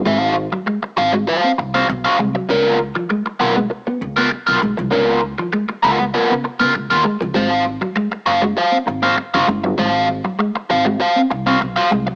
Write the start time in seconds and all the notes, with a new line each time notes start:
0.05 G#1 G#3 F4 B4 E5
0.17 F#4 C5 F5
0.35 muted clean electric guitar stroke
0.52 F#3, muted overdriven electric guitar stroke
0.66 G#3, muted overdriven electric guitar stroke
0.83 muted clean electric guitar stroke, muted overdriven electric guitar stroke
0.97 G#1 F#4 C5 F5
1.13 G#3, muted overdriven electric guitar stroke
1.27 F#4 C5 F5
1.44 C4
1.58 C2, muted overdriven electric guitar stroke, muted clean electric guitar stroke
1.74 C4 F#4 C5 F5
1.89 B1, muted overdriven electric guitar stroke, muted clean electric guitar stroke
2.04 F#4 C5 F5
2.19 C2 G#3, muted overdriven electric guitar stroke
2.35 F#3, muted overdriven electric guitar stroke
2.49 C#2 B3 C#4 F4 A#4
2.80 muted clean electric guitar stroke
2.95 F3, muted overdriven electric guitar stroke
3.10 G#3, muted overdriven electric guitar stroke
3.26 muted overdriven electric guitar stroke, muted clean electric guitar stroke
3.40 B1 B3 F4 A#4
3.56 G#3, muted overdriven electric guitar stroke
3.70 muted overdriven electric guitar stroke
3.87 B3, muted overdriven electric guitar stroke
4.01 C#2, muted clean electric guitar stroke
4.16 B3 F4 A#4
4.31 muted overdriven electric guitar stroke, muted clean electric guitar stroke
4.47 B1 B3 F4 A#4
4.61 B1 G#3, muted overdriven electric guitar stroke
4.77 C2 F3, muted overdriven electric guitar stroke
4.91 C#2 B3 C#4 F4 A#4
5.23 muted clean electric guitar stroke
5.38 F3, muted overdriven electric guitar stroke
5.53 G#3, muted overdriven electric guitar stroke
5.69 muted overdriven electric guitar stroke, muted clean electric guitar stroke
5.83 C#2 B3 F4 A#4
5.99 G#3, muted overdriven electric guitar stroke
6.14 B3 F4 A#4
6.30 C#3 B3
6.44 muted clean electric guitar stroke, muted overdriven electric guitar stroke
6.60 C#3 B3 F4 A#4
6.74 C#2, muted clean electric guitar stroke, muted overdriven electric guitar stroke
6.90 D#2 B3 F4 A#4
7.04 G#3, muted overdriven electric guitar stroke
7.21 C#2 F3, muted overdriven electric guitar stroke
7.34 G#1 G#3 F#4 C5 F5
7.66 muted clean electric guitar stroke
7.81 F#3, muted overdriven electric guitar stroke
7.96 G#3, muted overdriven electric guitar stroke
8.11 muted clean electric guitar stroke, muted overdriven electric guitar stroke
8.26 F#1 F#4 C5 F5
8.42 G#3, muted overdriven electric guitar stroke
8.57 F#4 C5 F5
8.72 C4
8.86 G#1, muted clean electric guitar stroke, muted overdriven electric guitar stroke
9.02 C4 F#4 C5 F5
9.17 muted clean electric guitar stroke, muted overdriven electric guitar stroke
9.34 F#1 F#4 C5 F5
9.48 F#1 G#3, muted overdriven electric guitar stroke
9.63 G1 F#3, muted overdriven electric guitar stroke
9.78 G#1 G#3 F#4 C5 F5
10.09 muted clean electric guitar stroke
10.24 F#3, muted overdriven electric guitar stroke
10.39 G#3, muted overdriven electric guitar stroke
10.55 muted clean electric guitar stroke, muted overdriven electric guitar stroke
10.70 G#1 F#4 C5 F5
10.85 G#3, muted overdriven electric guitar stroke
11.00 F#4 C5 F5
11.16 C4
11.30 C2, muted overdriven electric guitar stroke, muted clean electric guitar stroke
11.46 C4 F#4 C5 F5
11.61 B1, muted clean electric guitar stroke, muted overdriven electric guitar stroke
11.76 F#4 C5 F5
11.91 C2 G#3, muted overdriven electric guitar stroke
12.06 F#3, muted overdriven electric guitar stroke